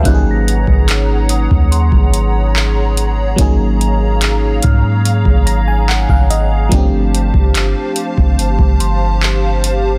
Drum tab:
HH |x-x-x-x-x-x---x-|x-x-x-x-x-x---x-|x-x-x-x-x-x---x-|
CP |----x-------x---|----x-------x---|----x-------x---|
BD |o--o---o-o------|o-----o--o---o--|o--o---o-o------|